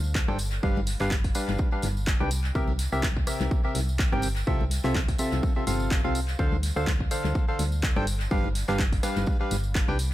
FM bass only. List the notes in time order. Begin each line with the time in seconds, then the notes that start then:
Already playing: D2
0.28 G1
0.63 G1
1.00 G1
1.48 G1
1.83 G1
2.20 C2
2.55 C2
2.92 C2
3.40 C2
3.75 C2
4.12 G1
4.47 C2
4.84 C2
5.32 C2
5.67 G1
6.04 C2
6.39 D2
6.76 D2
7.24 D2
7.59 D2
7.97 G1
8.31 G1
8.68 G1
9.16 G1
9.51 G1
9.88 C2